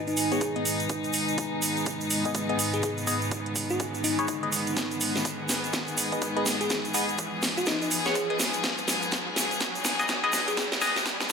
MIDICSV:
0, 0, Header, 1, 7, 480
1, 0, Start_track
1, 0, Key_signature, 5, "minor"
1, 0, Tempo, 483871
1, 889, Time_signature, 4, 2, 24, 8
1, 11230, End_track
2, 0, Start_track
2, 0, Title_t, "Ambient pad"
2, 0, Program_c, 0, 92
2, 0, Note_on_c, 0, 63, 83
2, 0, Note_on_c, 0, 71, 80
2, 0, Note_on_c, 0, 80, 73
2, 11230, Note_off_c, 0, 63, 0
2, 11230, Note_off_c, 0, 71, 0
2, 11230, Note_off_c, 0, 80, 0
2, 11230, End_track
3, 0, Start_track
3, 0, Title_t, "Synth stab"
3, 0, Program_c, 1, 62
3, 314, Note_on_c, 1, 59, 88
3, 314, Note_on_c, 1, 68, 82
3, 314, Note_on_c, 1, 73, 100
3, 442, Note_off_c, 1, 59, 0
3, 442, Note_off_c, 1, 68, 0
3, 442, Note_off_c, 1, 73, 0
3, 554, Note_on_c, 1, 59, 78
3, 554, Note_on_c, 1, 75, 87
3, 555, Note_on_c, 1, 68, 70
3, 627, Note_off_c, 1, 59, 0
3, 627, Note_off_c, 1, 68, 0
3, 627, Note_off_c, 1, 75, 0
3, 2234, Note_on_c, 1, 59, 77
3, 2234, Note_on_c, 1, 68, 66
3, 2234, Note_on_c, 1, 75, 85
3, 2362, Note_off_c, 1, 59, 0
3, 2362, Note_off_c, 1, 68, 0
3, 2362, Note_off_c, 1, 75, 0
3, 2474, Note_on_c, 1, 59, 79
3, 2474, Note_on_c, 1, 68, 73
3, 2474, Note_on_c, 1, 75, 89
3, 3025, Note_off_c, 1, 59, 0
3, 3025, Note_off_c, 1, 68, 0
3, 3025, Note_off_c, 1, 75, 0
3, 3047, Note_on_c, 1, 59, 95
3, 3047, Note_on_c, 1, 68, 88
3, 3047, Note_on_c, 1, 75, 102
3, 3161, Note_off_c, 1, 59, 0
3, 3161, Note_off_c, 1, 68, 0
3, 3161, Note_off_c, 1, 75, 0
3, 4154, Note_on_c, 1, 59, 89
3, 4154, Note_on_c, 1, 68, 85
3, 4154, Note_on_c, 1, 73, 101
3, 4282, Note_off_c, 1, 59, 0
3, 4282, Note_off_c, 1, 68, 0
3, 4282, Note_off_c, 1, 73, 0
3, 4394, Note_on_c, 1, 59, 77
3, 4394, Note_on_c, 1, 68, 73
3, 4394, Note_on_c, 1, 75, 88
3, 4466, Note_off_c, 1, 75, 0
3, 4467, Note_off_c, 1, 59, 0
3, 4467, Note_off_c, 1, 68, 0
3, 6075, Note_on_c, 1, 59, 77
3, 6075, Note_on_c, 1, 68, 70
3, 6075, Note_on_c, 1, 75, 81
3, 6202, Note_off_c, 1, 59, 0
3, 6202, Note_off_c, 1, 68, 0
3, 6202, Note_off_c, 1, 75, 0
3, 6314, Note_on_c, 1, 59, 79
3, 6314, Note_on_c, 1, 68, 76
3, 6314, Note_on_c, 1, 75, 90
3, 6866, Note_off_c, 1, 59, 0
3, 6866, Note_off_c, 1, 68, 0
3, 6866, Note_off_c, 1, 75, 0
3, 6887, Note_on_c, 1, 68, 89
3, 6887, Note_on_c, 1, 75, 105
3, 6888, Note_on_c, 1, 59, 97
3, 7001, Note_off_c, 1, 59, 0
3, 7001, Note_off_c, 1, 68, 0
3, 7001, Note_off_c, 1, 75, 0
3, 7994, Note_on_c, 1, 59, 95
3, 7994, Note_on_c, 1, 68, 81
3, 7994, Note_on_c, 1, 73, 104
3, 8122, Note_off_c, 1, 59, 0
3, 8122, Note_off_c, 1, 68, 0
3, 8122, Note_off_c, 1, 73, 0
3, 8234, Note_on_c, 1, 59, 81
3, 8234, Note_on_c, 1, 68, 73
3, 8234, Note_on_c, 1, 75, 92
3, 8306, Note_off_c, 1, 59, 0
3, 8306, Note_off_c, 1, 68, 0
3, 8306, Note_off_c, 1, 75, 0
3, 9914, Note_on_c, 1, 59, 74
3, 9914, Note_on_c, 1, 68, 71
3, 9914, Note_on_c, 1, 75, 86
3, 10042, Note_off_c, 1, 59, 0
3, 10042, Note_off_c, 1, 68, 0
3, 10042, Note_off_c, 1, 75, 0
3, 10154, Note_on_c, 1, 59, 82
3, 10155, Note_on_c, 1, 68, 75
3, 10155, Note_on_c, 1, 75, 88
3, 10706, Note_off_c, 1, 59, 0
3, 10706, Note_off_c, 1, 68, 0
3, 10706, Note_off_c, 1, 75, 0
3, 10728, Note_on_c, 1, 68, 90
3, 10728, Note_on_c, 1, 75, 108
3, 10729, Note_on_c, 1, 59, 97
3, 10841, Note_off_c, 1, 68, 0
3, 10841, Note_off_c, 1, 75, 0
3, 10842, Note_off_c, 1, 59, 0
3, 11230, End_track
4, 0, Start_track
4, 0, Title_t, "FM electric piano"
4, 0, Program_c, 2, 5
4, 75, Note_on_c, 2, 63, 75
4, 135, Note_off_c, 2, 63, 0
4, 315, Note_on_c, 2, 68, 84
4, 795, Note_off_c, 2, 68, 0
4, 2715, Note_on_c, 2, 68, 91
4, 2852, Note_off_c, 2, 68, 0
4, 3675, Note_on_c, 2, 66, 89
4, 3750, Note_off_c, 2, 66, 0
4, 4008, Note_on_c, 2, 63, 88
4, 4691, Note_off_c, 2, 63, 0
4, 6554, Note_on_c, 2, 68, 92
4, 6692, Note_off_c, 2, 68, 0
4, 7514, Note_on_c, 2, 66, 88
4, 7589, Note_off_c, 2, 66, 0
4, 7608, Note_on_c, 2, 63, 89
4, 7702, Note_off_c, 2, 63, 0
4, 7755, Note_on_c, 2, 63, 79
4, 7815, Note_off_c, 2, 63, 0
4, 7996, Note_on_c, 2, 68, 93
4, 8475, Note_off_c, 2, 68, 0
4, 10396, Note_on_c, 2, 68, 97
4, 10533, Note_off_c, 2, 68, 0
4, 11230, End_track
5, 0, Start_track
5, 0, Title_t, "String section"
5, 0, Program_c, 3, 48
5, 0, Note_on_c, 3, 44, 77
5, 0, Note_on_c, 3, 56, 71
5, 0, Note_on_c, 3, 59, 72
5, 0, Note_on_c, 3, 63, 86
5, 4718, Note_off_c, 3, 63, 0
5, 4726, Note_on_c, 3, 68, 87
5, 11230, Note_off_c, 3, 44, 0
5, 11230, Note_off_c, 3, 56, 0
5, 11230, Note_off_c, 3, 59, 0
5, 11230, Note_off_c, 3, 68, 0
5, 11230, End_track
6, 0, Start_track
6, 0, Title_t, "Riser"
6, 0, Program_c, 4, 103
6, 0, Note_on_c, 4, 60, 71
6, 11230, Note_off_c, 4, 60, 0
6, 11230, End_track
7, 0, Start_track
7, 0, Title_t, "Drums"
7, 75, Note_on_c, 9, 42, 35
7, 78, Note_on_c, 9, 82, 33
7, 165, Note_off_c, 9, 82, 0
7, 165, Note_on_c, 9, 82, 97
7, 168, Note_on_c, 9, 46, 109
7, 174, Note_off_c, 9, 42, 0
7, 264, Note_off_c, 9, 82, 0
7, 267, Note_off_c, 9, 46, 0
7, 315, Note_on_c, 9, 42, 49
7, 321, Note_on_c, 9, 82, 38
7, 407, Note_off_c, 9, 82, 0
7, 407, Note_on_c, 9, 82, 56
7, 408, Note_off_c, 9, 42, 0
7, 408, Note_on_c, 9, 36, 113
7, 408, Note_on_c, 9, 42, 78
7, 506, Note_off_c, 9, 82, 0
7, 507, Note_off_c, 9, 36, 0
7, 507, Note_off_c, 9, 42, 0
7, 555, Note_on_c, 9, 42, 36
7, 648, Note_on_c, 9, 46, 94
7, 653, Note_on_c, 9, 82, 90
7, 654, Note_off_c, 9, 42, 0
7, 747, Note_off_c, 9, 46, 0
7, 753, Note_off_c, 9, 82, 0
7, 794, Note_on_c, 9, 42, 49
7, 794, Note_on_c, 9, 82, 40
7, 886, Note_off_c, 9, 82, 0
7, 886, Note_on_c, 9, 82, 49
7, 887, Note_off_c, 9, 42, 0
7, 887, Note_on_c, 9, 42, 72
7, 888, Note_on_c, 9, 36, 116
7, 985, Note_off_c, 9, 82, 0
7, 986, Note_off_c, 9, 42, 0
7, 987, Note_off_c, 9, 36, 0
7, 1031, Note_on_c, 9, 82, 35
7, 1034, Note_on_c, 9, 42, 34
7, 1119, Note_off_c, 9, 82, 0
7, 1119, Note_on_c, 9, 82, 98
7, 1128, Note_on_c, 9, 46, 105
7, 1133, Note_off_c, 9, 42, 0
7, 1218, Note_off_c, 9, 82, 0
7, 1227, Note_off_c, 9, 46, 0
7, 1272, Note_on_c, 9, 82, 37
7, 1274, Note_on_c, 9, 42, 33
7, 1367, Note_off_c, 9, 42, 0
7, 1367, Note_on_c, 9, 42, 73
7, 1368, Note_on_c, 9, 36, 117
7, 1372, Note_off_c, 9, 82, 0
7, 1373, Note_on_c, 9, 82, 49
7, 1466, Note_off_c, 9, 42, 0
7, 1467, Note_off_c, 9, 36, 0
7, 1472, Note_off_c, 9, 82, 0
7, 1607, Note_on_c, 9, 46, 98
7, 1609, Note_on_c, 9, 82, 93
7, 1706, Note_off_c, 9, 46, 0
7, 1708, Note_off_c, 9, 82, 0
7, 1755, Note_on_c, 9, 42, 34
7, 1757, Note_on_c, 9, 82, 38
7, 1845, Note_off_c, 9, 82, 0
7, 1845, Note_on_c, 9, 82, 51
7, 1848, Note_off_c, 9, 42, 0
7, 1848, Note_on_c, 9, 36, 113
7, 1848, Note_on_c, 9, 42, 73
7, 1944, Note_off_c, 9, 82, 0
7, 1947, Note_off_c, 9, 36, 0
7, 1947, Note_off_c, 9, 42, 0
7, 1992, Note_on_c, 9, 82, 34
7, 1995, Note_on_c, 9, 42, 33
7, 2085, Note_off_c, 9, 82, 0
7, 2085, Note_on_c, 9, 82, 89
7, 2087, Note_on_c, 9, 46, 108
7, 2094, Note_off_c, 9, 42, 0
7, 2184, Note_off_c, 9, 82, 0
7, 2186, Note_off_c, 9, 46, 0
7, 2234, Note_on_c, 9, 42, 46
7, 2235, Note_on_c, 9, 36, 60
7, 2236, Note_on_c, 9, 82, 36
7, 2327, Note_off_c, 9, 42, 0
7, 2327, Note_on_c, 9, 42, 75
7, 2328, Note_off_c, 9, 36, 0
7, 2328, Note_on_c, 9, 36, 118
7, 2331, Note_off_c, 9, 82, 0
7, 2331, Note_on_c, 9, 82, 58
7, 2426, Note_off_c, 9, 42, 0
7, 2427, Note_off_c, 9, 36, 0
7, 2430, Note_off_c, 9, 82, 0
7, 2474, Note_on_c, 9, 42, 36
7, 2567, Note_on_c, 9, 46, 97
7, 2573, Note_off_c, 9, 42, 0
7, 2573, Note_on_c, 9, 82, 96
7, 2666, Note_off_c, 9, 46, 0
7, 2672, Note_off_c, 9, 82, 0
7, 2712, Note_on_c, 9, 82, 36
7, 2714, Note_on_c, 9, 42, 49
7, 2805, Note_off_c, 9, 82, 0
7, 2805, Note_on_c, 9, 82, 54
7, 2807, Note_off_c, 9, 42, 0
7, 2807, Note_on_c, 9, 42, 71
7, 2808, Note_on_c, 9, 36, 114
7, 2904, Note_off_c, 9, 82, 0
7, 2907, Note_off_c, 9, 36, 0
7, 2907, Note_off_c, 9, 42, 0
7, 2954, Note_on_c, 9, 42, 35
7, 2954, Note_on_c, 9, 82, 37
7, 3047, Note_off_c, 9, 82, 0
7, 3047, Note_on_c, 9, 46, 105
7, 3047, Note_on_c, 9, 82, 96
7, 3053, Note_off_c, 9, 42, 0
7, 3146, Note_off_c, 9, 82, 0
7, 3147, Note_off_c, 9, 46, 0
7, 3189, Note_on_c, 9, 82, 41
7, 3194, Note_on_c, 9, 42, 34
7, 3287, Note_off_c, 9, 42, 0
7, 3287, Note_off_c, 9, 82, 0
7, 3287, Note_on_c, 9, 42, 73
7, 3287, Note_on_c, 9, 82, 50
7, 3288, Note_on_c, 9, 36, 121
7, 3386, Note_off_c, 9, 82, 0
7, 3387, Note_off_c, 9, 36, 0
7, 3387, Note_off_c, 9, 42, 0
7, 3434, Note_on_c, 9, 42, 33
7, 3527, Note_on_c, 9, 46, 92
7, 3527, Note_on_c, 9, 82, 91
7, 3528, Note_on_c, 9, 36, 61
7, 3533, Note_off_c, 9, 42, 0
7, 3626, Note_off_c, 9, 82, 0
7, 3627, Note_off_c, 9, 36, 0
7, 3627, Note_off_c, 9, 46, 0
7, 3668, Note_on_c, 9, 82, 41
7, 3674, Note_on_c, 9, 42, 33
7, 3768, Note_off_c, 9, 42, 0
7, 3768, Note_off_c, 9, 82, 0
7, 3768, Note_on_c, 9, 36, 115
7, 3768, Note_on_c, 9, 42, 70
7, 3768, Note_on_c, 9, 82, 49
7, 3867, Note_off_c, 9, 36, 0
7, 3867, Note_off_c, 9, 42, 0
7, 3867, Note_off_c, 9, 82, 0
7, 3914, Note_on_c, 9, 42, 33
7, 3914, Note_on_c, 9, 82, 33
7, 4008, Note_on_c, 9, 46, 109
7, 4009, Note_off_c, 9, 82, 0
7, 4009, Note_on_c, 9, 82, 90
7, 4014, Note_off_c, 9, 42, 0
7, 4107, Note_off_c, 9, 46, 0
7, 4108, Note_off_c, 9, 82, 0
7, 4153, Note_on_c, 9, 82, 36
7, 4154, Note_on_c, 9, 42, 47
7, 4245, Note_off_c, 9, 82, 0
7, 4245, Note_on_c, 9, 82, 55
7, 4247, Note_off_c, 9, 42, 0
7, 4247, Note_on_c, 9, 42, 71
7, 4248, Note_on_c, 9, 36, 121
7, 4344, Note_off_c, 9, 82, 0
7, 4347, Note_off_c, 9, 36, 0
7, 4347, Note_off_c, 9, 42, 0
7, 4395, Note_on_c, 9, 42, 35
7, 4488, Note_on_c, 9, 46, 93
7, 4488, Note_on_c, 9, 82, 94
7, 4494, Note_off_c, 9, 42, 0
7, 4587, Note_off_c, 9, 46, 0
7, 4587, Note_off_c, 9, 82, 0
7, 4632, Note_on_c, 9, 82, 36
7, 4635, Note_on_c, 9, 42, 49
7, 4727, Note_off_c, 9, 82, 0
7, 4727, Note_on_c, 9, 82, 58
7, 4728, Note_off_c, 9, 42, 0
7, 4728, Note_on_c, 9, 36, 114
7, 4728, Note_on_c, 9, 38, 46
7, 4728, Note_on_c, 9, 42, 69
7, 4826, Note_off_c, 9, 82, 0
7, 4827, Note_off_c, 9, 36, 0
7, 4827, Note_off_c, 9, 38, 0
7, 4827, Note_off_c, 9, 42, 0
7, 4874, Note_on_c, 9, 82, 33
7, 4875, Note_on_c, 9, 42, 35
7, 4966, Note_off_c, 9, 82, 0
7, 4966, Note_on_c, 9, 82, 85
7, 4968, Note_on_c, 9, 46, 105
7, 4974, Note_off_c, 9, 42, 0
7, 5065, Note_off_c, 9, 82, 0
7, 5067, Note_off_c, 9, 46, 0
7, 5115, Note_on_c, 9, 38, 43
7, 5115, Note_on_c, 9, 42, 33
7, 5121, Note_on_c, 9, 82, 41
7, 5208, Note_off_c, 9, 42, 0
7, 5208, Note_on_c, 9, 36, 113
7, 5208, Note_on_c, 9, 42, 75
7, 5211, Note_off_c, 9, 82, 0
7, 5211, Note_on_c, 9, 82, 55
7, 5214, Note_off_c, 9, 38, 0
7, 5307, Note_off_c, 9, 36, 0
7, 5308, Note_off_c, 9, 42, 0
7, 5310, Note_off_c, 9, 82, 0
7, 5445, Note_on_c, 9, 82, 83
7, 5448, Note_on_c, 9, 38, 53
7, 5448, Note_on_c, 9, 46, 93
7, 5544, Note_off_c, 9, 82, 0
7, 5547, Note_off_c, 9, 38, 0
7, 5547, Note_off_c, 9, 46, 0
7, 5595, Note_on_c, 9, 42, 33
7, 5599, Note_on_c, 9, 82, 39
7, 5683, Note_off_c, 9, 82, 0
7, 5683, Note_on_c, 9, 82, 48
7, 5688, Note_off_c, 9, 42, 0
7, 5688, Note_on_c, 9, 36, 114
7, 5688, Note_on_c, 9, 38, 48
7, 5688, Note_on_c, 9, 42, 71
7, 5782, Note_off_c, 9, 82, 0
7, 5787, Note_off_c, 9, 36, 0
7, 5787, Note_off_c, 9, 38, 0
7, 5787, Note_off_c, 9, 42, 0
7, 5826, Note_on_c, 9, 82, 33
7, 5835, Note_on_c, 9, 42, 34
7, 5926, Note_off_c, 9, 82, 0
7, 5927, Note_on_c, 9, 82, 98
7, 5928, Note_on_c, 9, 46, 105
7, 5934, Note_off_c, 9, 42, 0
7, 6026, Note_off_c, 9, 82, 0
7, 6027, Note_off_c, 9, 46, 0
7, 6074, Note_on_c, 9, 36, 58
7, 6075, Note_on_c, 9, 42, 48
7, 6077, Note_on_c, 9, 82, 40
7, 6168, Note_off_c, 9, 36, 0
7, 6168, Note_off_c, 9, 42, 0
7, 6168, Note_on_c, 9, 36, 119
7, 6168, Note_on_c, 9, 42, 72
7, 6169, Note_off_c, 9, 82, 0
7, 6169, Note_on_c, 9, 82, 53
7, 6267, Note_off_c, 9, 36, 0
7, 6267, Note_off_c, 9, 42, 0
7, 6268, Note_off_c, 9, 82, 0
7, 6315, Note_on_c, 9, 42, 37
7, 6408, Note_on_c, 9, 38, 57
7, 6408, Note_on_c, 9, 46, 93
7, 6408, Note_on_c, 9, 82, 91
7, 6414, Note_off_c, 9, 42, 0
7, 6507, Note_off_c, 9, 38, 0
7, 6507, Note_off_c, 9, 46, 0
7, 6507, Note_off_c, 9, 82, 0
7, 6555, Note_on_c, 9, 42, 51
7, 6559, Note_on_c, 9, 82, 35
7, 6646, Note_off_c, 9, 82, 0
7, 6646, Note_on_c, 9, 82, 49
7, 6648, Note_off_c, 9, 42, 0
7, 6648, Note_on_c, 9, 36, 112
7, 6648, Note_on_c, 9, 38, 57
7, 6648, Note_on_c, 9, 42, 78
7, 6745, Note_off_c, 9, 82, 0
7, 6747, Note_off_c, 9, 36, 0
7, 6747, Note_off_c, 9, 38, 0
7, 6747, Note_off_c, 9, 42, 0
7, 6795, Note_on_c, 9, 42, 36
7, 6795, Note_on_c, 9, 82, 33
7, 6885, Note_off_c, 9, 82, 0
7, 6885, Note_on_c, 9, 82, 97
7, 6888, Note_on_c, 9, 46, 104
7, 6894, Note_off_c, 9, 42, 0
7, 6984, Note_off_c, 9, 82, 0
7, 6987, Note_off_c, 9, 46, 0
7, 7034, Note_on_c, 9, 82, 35
7, 7035, Note_on_c, 9, 42, 34
7, 7123, Note_off_c, 9, 82, 0
7, 7123, Note_on_c, 9, 82, 50
7, 7128, Note_off_c, 9, 42, 0
7, 7128, Note_on_c, 9, 36, 113
7, 7128, Note_on_c, 9, 42, 75
7, 7223, Note_off_c, 9, 82, 0
7, 7227, Note_off_c, 9, 36, 0
7, 7227, Note_off_c, 9, 42, 0
7, 7365, Note_on_c, 9, 82, 80
7, 7368, Note_on_c, 9, 36, 59
7, 7368, Note_on_c, 9, 38, 65
7, 7368, Note_on_c, 9, 46, 92
7, 7464, Note_off_c, 9, 82, 0
7, 7467, Note_off_c, 9, 36, 0
7, 7467, Note_off_c, 9, 38, 0
7, 7467, Note_off_c, 9, 46, 0
7, 7514, Note_on_c, 9, 42, 35
7, 7514, Note_on_c, 9, 82, 41
7, 7599, Note_off_c, 9, 82, 0
7, 7599, Note_on_c, 9, 82, 54
7, 7607, Note_off_c, 9, 42, 0
7, 7607, Note_on_c, 9, 38, 64
7, 7607, Note_on_c, 9, 42, 76
7, 7608, Note_on_c, 9, 36, 110
7, 7698, Note_off_c, 9, 82, 0
7, 7707, Note_off_c, 9, 36, 0
7, 7707, Note_off_c, 9, 38, 0
7, 7707, Note_off_c, 9, 42, 0
7, 7754, Note_on_c, 9, 42, 34
7, 7757, Note_on_c, 9, 82, 36
7, 7846, Note_off_c, 9, 82, 0
7, 7846, Note_on_c, 9, 82, 87
7, 7848, Note_on_c, 9, 46, 101
7, 7854, Note_off_c, 9, 42, 0
7, 7945, Note_off_c, 9, 82, 0
7, 7947, Note_off_c, 9, 46, 0
7, 7992, Note_on_c, 9, 82, 36
7, 7994, Note_on_c, 9, 38, 56
7, 7994, Note_on_c, 9, 42, 52
7, 8087, Note_off_c, 9, 82, 0
7, 8087, Note_on_c, 9, 82, 49
7, 8088, Note_off_c, 9, 42, 0
7, 8088, Note_on_c, 9, 36, 113
7, 8088, Note_on_c, 9, 42, 77
7, 8094, Note_off_c, 9, 38, 0
7, 8186, Note_off_c, 9, 82, 0
7, 8187, Note_off_c, 9, 36, 0
7, 8187, Note_off_c, 9, 42, 0
7, 8235, Note_on_c, 9, 42, 37
7, 8328, Note_on_c, 9, 38, 73
7, 8328, Note_on_c, 9, 46, 90
7, 8329, Note_on_c, 9, 82, 95
7, 8334, Note_off_c, 9, 42, 0
7, 8427, Note_off_c, 9, 38, 0
7, 8427, Note_off_c, 9, 46, 0
7, 8428, Note_off_c, 9, 82, 0
7, 8466, Note_on_c, 9, 82, 34
7, 8475, Note_on_c, 9, 42, 52
7, 8565, Note_off_c, 9, 82, 0
7, 8568, Note_off_c, 9, 42, 0
7, 8568, Note_on_c, 9, 36, 110
7, 8568, Note_on_c, 9, 38, 70
7, 8568, Note_on_c, 9, 42, 77
7, 8568, Note_on_c, 9, 82, 52
7, 8667, Note_off_c, 9, 36, 0
7, 8667, Note_off_c, 9, 38, 0
7, 8667, Note_off_c, 9, 42, 0
7, 8667, Note_off_c, 9, 82, 0
7, 8705, Note_on_c, 9, 82, 32
7, 8715, Note_on_c, 9, 42, 36
7, 8804, Note_off_c, 9, 82, 0
7, 8808, Note_on_c, 9, 38, 77
7, 8808, Note_on_c, 9, 46, 99
7, 8812, Note_on_c, 9, 82, 92
7, 8814, Note_off_c, 9, 42, 0
7, 8907, Note_off_c, 9, 38, 0
7, 8907, Note_off_c, 9, 46, 0
7, 8911, Note_off_c, 9, 82, 0
7, 8952, Note_on_c, 9, 82, 39
7, 8955, Note_on_c, 9, 42, 37
7, 9044, Note_off_c, 9, 82, 0
7, 9044, Note_on_c, 9, 82, 46
7, 9048, Note_off_c, 9, 42, 0
7, 9048, Note_on_c, 9, 36, 111
7, 9048, Note_on_c, 9, 38, 77
7, 9048, Note_on_c, 9, 42, 80
7, 9143, Note_off_c, 9, 82, 0
7, 9147, Note_off_c, 9, 36, 0
7, 9147, Note_off_c, 9, 38, 0
7, 9147, Note_off_c, 9, 42, 0
7, 9288, Note_on_c, 9, 38, 82
7, 9288, Note_on_c, 9, 46, 89
7, 9298, Note_on_c, 9, 82, 95
7, 9388, Note_off_c, 9, 38, 0
7, 9388, Note_off_c, 9, 46, 0
7, 9398, Note_off_c, 9, 82, 0
7, 9435, Note_on_c, 9, 42, 38
7, 9441, Note_on_c, 9, 82, 39
7, 9527, Note_off_c, 9, 82, 0
7, 9527, Note_on_c, 9, 82, 49
7, 9528, Note_off_c, 9, 42, 0
7, 9528, Note_on_c, 9, 36, 112
7, 9528, Note_on_c, 9, 38, 78
7, 9528, Note_on_c, 9, 42, 79
7, 9626, Note_off_c, 9, 82, 0
7, 9627, Note_off_c, 9, 36, 0
7, 9627, Note_off_c, 9, 38, 0
7, 9627, Note_off_c, 9, 42, 0
7, 9675, Note_on_c, 9, 42, 36
7, 9676, Note_on_c, 9, 82, 36
7, 9765, Note_off_c, 9, 82, 0
7, 9765, Note_on_c, 9, 82, 90
7, 9768, Note_on_c, 9, 38, 87
7, 9768, Note_on_c, 9, 46, 103
7, 9774, Note_off_c, 9, 42, 0
7, 9864, Note_off_c, 9, 82, 0
7, 9867, Note_off_c, 9, 38, 0
7, 9867, Note_off_c, 9, 46, 0
7, 9915, Note_on_c, 9, 36, 55
7, 9915, Note_on_c, 9, 42, 52
7, 9918, Note_on_c, 9, 82, 42
7, 9999, Note_off_c, 9, 82, 0
7, 9999, Note_on_c, 9, 82, 50
7, 10008, Note_off_c, 9, 36, 0
7, 10008, Note_off_c, 9, 42, 0
7, 10008, Note_on_c, 9, 36, 112
7, 10008, Note_on_c, 9, 38, 87
7, 10008, Note_on_c, 9, 42, 80
7, 10098, Note_off_c, 9, 82, 0
7, 10107, Note_off_c, 9, 36, 0
7, 10108, Note_off_c, 9, 38, 0
7, 10108, Note_off_c, 9, 42, 0
7, 10155, Note_on_c, 9, 42, 41
7, 10242, Note_on_c, 9, 82, 91
7, 10248, Note_on_c, 9, 38, 92
7, 10248, Note_on_c, 9, 46, 94
7, 10254, Note_off_c, 9, 42, 0
7, 10341, Note_off_c, 9, 82, 0
7, 10347, Note_off_c, 9, 38, 0
7, 10347, Note_off_c, 9, 46, 0
7, 10395, Note_on_c, 9, 42, 53
7, 10395, Note_on_c, 9, 82, 36
7, 10488, Note_off_c, 9, 42, 0
7, 10488, Note_on_c, 9, 36, 116
7, 10488, Note_on_c, 9, 38, 88
7, 10488, Note_on_c, 9, 42, 85
7, 10489, Note_off_c, 9, 82, 0
7, 10489, Note_on_c, 9, 82, 47
7, 10587, Note_off_c, 9, 36, 0
7, 10587, Note_off_c, 9, 38, 0
7, 10587, Note_off_c, 9, 42, 0
7, 10588, Note_off_c, 9, 82, 0
7, 10635, Note_on_c, 9, 38, 83
7, 10635, Note_on_c, 9, 42, 39
7, 10637, Note_on_c, 9, 82, 38
7, 10727, Note_off_c, 9, 82, 0
7, 10727, Note_on_c, 9, 82, 95
7, 10728, Note_off_c, 9, 38, 0
7, 10728, Note_on_c, 9, 38, 93
7, 10728, Note_on_c, 9, 46, 104
7, 10734, Note_off_c, 9, 42, 0
7, 10826, Note_off_c, 9, 82, 0
7, 10827, Note_off_c, 9, 38, 0
7, 10827, Note_off_c, 9, 46, 0
7, 10875, Note_on_c, 9, 38, 82
7, 10875, Note_on_c, 9, 42, 37
7, 10878, Note_on_c, 9, 82, 42
7, 10968, Note_off_c, 9, 38, 0
7, 10968, Note_off_c, 9, 42, 0
7, 10968, Note_on_c, 9, 36, 114
7, 10968, Note_on_c, 9, 38, 94
7, 10968, Note_on_c, 9, 42, 83
7, 10969, Note_off_c, 9, 82, 0
7, 10969, Note_on_c, 9, 82, 49
7, 11067, Note_off_c, 9, 36, 0
7, 11067, Note_off_c, 9, 38, 0
7, 11067, Note_off_c, 9, 42, 0
7, 11068, Note_off_c, 9, 82, 0
7, 11115, Note_on_c, 9, 38, 86
7, 11115, Note_on_c, 9, 42, 39
7, 11117, Note_on_c, 9, 82, 37
7, 11214, Note_off_c, 9, 38, 0
7, 11214, Note_off_c, 9, 42, 0
7, 11216, Note_off_c, 9, 82, 0
7, 11230, End_track
0, 0, End_of_file